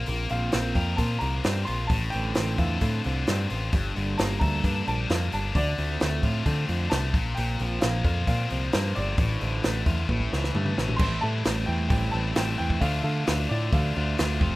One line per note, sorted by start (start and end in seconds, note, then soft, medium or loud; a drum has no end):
0.00 1.90 A#3 medium
0.00 1.90 C4 medium
0.00 0.98 F4 medium
0.00 1.91 F4 medium
0.00 1.92 A#4 medium
0.06 0.26 A#1 medium
0.06 1.20 A#3 medium
0.06 open hi-hat medium
0.29 0.49 A#1 medium
0.29 0.52 C4 medium
0.29 0.78 F5 loud
0.29 open hi-hat soft
0.52 0.72 A#1 medium
0.52 1.44 C4 medium
0.52 snare loud
0.52 open hi-hat medium
0.74 0.94 F2 medium
0.74 1.91 A#4 medium
0.74 0.99 G5 medium
0.74 kick medium
0.74 open hi-hat soft
0.96 1.17 A#2 medium
0.96 1.66 F4 medium
0.96 1.19 A5 medium
0.96 kick medium
0.96 open hi-hat medium
1.19 1.40 C2 medium
1.19 1.91 A#3 medium
1.19 1.68 A#5 loud
1.19 open hi-hat soft
1.44 1.64 G2 loud
1.44 1.91 C4 medium
1.44 snare loud
1.44 open hi-hat medium
1.65 1.87 A#1 medium
1.65 1.91 F4 medium
1.65 1.90 C6 medium
1.65 open hi-hat soft
1.87 2.09 A1 medium
1.87 3.73 A2 medium
1.87 3.05 A2 medium
1.87 1.93 A5 loud
1.87 kick loud
1.87 open hi-hat medium
1.92 3.74 F4 medium
2.10 3.03 D3 medium
2.10 2.59 G5 loud
2.10 open hi-hat soft
2.14 2.32 A1 medium
2.35 2.55 A1 medium
2.35 3.27 C4 medium
2.35 snare loud
2.35 open hi-hat medium
2.58 2.77 E2 medium
2.58 3.76 A4 medium
2.58 3.46 F5 medium
2.58 kick medium
2.58 open hi-hat soft
2.81 3.00 A2 medium
2.81 3.50 F4 medium
2.81 kick medium
2.81 open hi-hat medium
3.04 3.24 C2 medium
3.04 3.73 D3 medium
3.04 open hi-hat soft
3.27 3.46 G2 medium
3.27 3.74 C4 medium
3.27 snare loud
3.27 open hi-hat medium
3.50 3.69 A1 medium
3.50 3.74 F4 medium
3.50 open hi-hat soft
3.73 3.91 G1 medium
3.73 5.55 G2 medium
3.73 4.87 G2 medium
3.73 5.53 D3 medium
3.73 5.54 G3 medium
3.73 5.56 A#3 medium
3.73 5.56 D4 medium
3.73 5.57 A4 medium
3.73 kick loud
3.73 open hi-hat medium
3.96 4.15 G1 medium
3.96 5.10 D3 medium
3.96 open hi-hat soft
4.18 4.37 G1 medium
4.18 5.08 A#3 medium
4.18 4.39 A5 loud
4.18 snare loud
4.18 open hi-hat medium
4.39 4.60 D2 medium
4.39 5.56 A4 medium
4.39 4.88 A#5 loud
4.39 kick medium
4.39 open hi-hat soft
4.64 4.82 G2 medium
4.64 5.32 D4 medium
4.64 kick medium
4.64 open hi-hat medium
4.87 5.06 A#1 medium
4.87 5.54 G3 medium
4.87 5.32 A5 loud
4.87 open hi-hat soft
5.09 5.28 F2 medium
5.09 5.55 A#3 medium
5.09 snare loud
5.09 open hi-hat medium
5.32 5.51 G1 medium
5.32 5.56 D4 medium
5.32 5.56 A5 medium
5.32 open hi-hat medium
5.55 5.73 D2 medium
5.55 6.69 D3 medium
5.55 7.15 C4 medium
5.55 7.16 F4 medium
5.55 6.96 D5 loud
5.55 kick loud
5.55 open hi-hat medium
5.78 5.96 D2 medium
5.78 6.01 A3 medium
5.78 open hi-hat soft
6.00 6.20 D2 medium
6.00 6.91 A3 medium
6.00 snare loud
6.00 open hi-hat medium
6.23 6.41 A2 medium
6.23 8.05 F4 medium
6.23 kick medium
6.23 open hi-hat medium
6.46 6.64 D3 medium
6.46 7.18 C4 medium
6.46 kick medium
6.46 open hi-hat medium
6.69 6.87 F2 medium
6.69 7.15 D3 medium
6.69 open hi-hat soft
6.90 7.15 C2 loud
6.90 7.15 A3 medium
6.90 7.37 A5 loud
6.90 snare loud
6.90 open hi-hat medium
7.14 7.33 A#1 medium
7.14 7.37 A#2 medium
7.14 9.18 F3 medium
7.14 9.19 A#3 medium
7.14 9.19 C4 medium
7.14 9.19 F4 medium
7.14 kick loud
7.14 open hi-hat soft
7.35 7.56 A#1 medium
7.35 8.51 A#2 medium
7.35 7.83 G5 medium
7.35 open hi-hat medium
7.59 7.78 A#1 medium
7.59 8.49 F3 medium
7.59 open hi-hat soft
7.81 8.01 A#1 medium
7.81 8.72 A#3 medium
7.81 8.24 F5 medium
7.81 snare loud
7.81 open hi-hat medium
8.04 8.23 F2 medium
8.04 9.19 F4 medium
8.04 kick medium
8.04 open hi-hat soft
8.27 8.46 A#2 medium
8.27 8.94 C4 medium
8.27 8.74 F5 medium
8.27 kick medium
8.27 open hi-hat medium
8.50 8.69 C2 medium
8.50 9.18 F3 medium
8.50 open hi-hat soft
8.73 8.92 G2 medium
8.73 9.19 A#3 medium
8.73 8.97 C5 medium
8.73 snare loud
8.73 open hi-hat medium
8.95 9.15 G1 medium
8.95 9.18 C4 medium
8.95 9.82 D5 medium
8.95 open hi-hat soft
9.18 9.36 A1 medium
9.18 10.07 A2 medium
9.18 10.09 A2 medium
9.18 10.09 D3 medium
9.18 10.09 A3 medium
9.18 10.10 C4 medium
9.18 10.10 F4 medium
9.18 kick loud
9.18 open hi-hat medium
9.40 9.60 A1 medium
9.40 10.09 D3 medium
9.40 open hi-hat soft
9.64 9.83 A1 medium
9.64 10.10 A3 medium
9.64 snare loud
9.64 open hi-hat medium
9.86 10.04 E2 medium
9.86 10.09 F4 medium
9.86 kick medium
9.86 open hi-hat medium
10.08 10.27 A1 medium
10.08 10.98 A2 medium
10.08 10.99 A2 medium
10.08 10.99 E3 medium
10.08 11.00 A3 medium
10.08 11.01 C#4 medium
10.08 11.01 E4 medium
10.08 kick medium
10.08 high tom medium
10.21 kick medium
10.33 10.51 C#2 medium
10.33 11.01 E3 medium
10.33 snare medium
10.44 snare medium
10.55 10.73 G2 medium
10.55 11.01 A3 medium
10.55 mid tom medium
10.66 mid tom medium
10.78 10.96 A1 medium
10.78 11.00 C#4 medium
10.78 snare medium
10.88 floor tom medium
10.97 11.18 A1 medium
10.97 11.89 A2 medium
10.97 11.90 E3 medium
10.97 11.22 C6 loud
10.97 kick loud
10.97 crash loud
11.01 12.13 A2 medium
11.01 12.13 E3 medium
11.01 11.90 G3 medium
11.01 12.14 A3 medium
11.01 11.91 C4 medium
11.01 12.13 C4 medium
11.01 11.91 E4 medium
11.01 12.12 E4 medium
11.21 11.42 A2 medium
11.21 11.69 A5 loud
11.45 11.64 A1 medium
11.45 snare loud
11.45 open hi-hat medium
11.66 11.87 E2 medium
11.66 11.87 G5 medium
11.89 12.09 A1 medium
11.89 12.80 A2 medium
11.89 12.80 E3 medium
11.89 12.81 G3 medium
11.89 12.82 C4 medium
11.89 12.13 G5 medium
11.89 kick loud
11.89 open hi-hat medium
11.93 12.82 E4 medium
12.11 12.32 A1 medium
12.11 12.36 E3 medium
12.11 12.37 A3 medium
12.11 12.35 C4 medium
12.11 12.35 E4 medium
12.11 12.36 A5 medium
12.15 12.35 A2 medium
12.35 12.55 A1 medium
12.35 12.81 A2 medium
12.35 12.81 E3 medium
12.35 12.82 A3 medium
12.35 12.82 C4 medium
12.35 12.82 E4 medium
12.35 12.57 G5 medium
12.35 snare loud
12.35 open hi-hat medium
12.58 12.78 E2 medium
12.58 12.80 G5 medium
12.70 kick medium
12.81 13.00 D2 medium
12.81 13.71 D3 medium
12.81 13.94 D3 medium
12.81 13.72 A3 medium
12.81 13.95 A3 medium
12.81 13.95 D4 medium
12.81 13.73 D4 medium
12.81 13.94 F4 loud
12.81 13.73 F4 medium
12.81 13.02 F5 medium
12.81 kick medium
12.81 open hi-hat medium
13.03 13.23 D3 medium
13.03 13.51 F5 loud
13.27 13.46 D2 medium
13.27 snare loud
13.27 open hi-hat medium
13.49 13.69 A2 medium
13.49 13.73 D5 medium
13.72 13.91 D2 medium
13.72 14.39 D3 medium
13.72 14.40 A3 medium
13.72 14.41 D4 medium
13.72 14.42 F4 medium
13.72 14.38 F5 medium
13.72 kick loud
13.72 open hi-hat medium
13.95 14.15 D2 medium
13.95 14.16 D3 medium
13.95 14.18 A3 medium
13.95 14.18 D4 medium
13.95 14.17 F4 medium
14.17 14.38 D2 loud
14.17 14.39 D3 medium
14.17 14.40 A3 medium
14.17 14.40 D4 medium
14.17 14.41 F4 medium
14.17 snare loud
14.17 open hi-hat medium
14.39 14.56 F1 medium
14.39 14.56 F2 medium
14.39 14.56 C3 medium
14.39 14.56 F3 medium
14.39 14.56 A3 medium
14.39 14.56 A3 loud
14.39 14.56 C4 loud
14.39 14.56 F4 loud
14.39 kick loud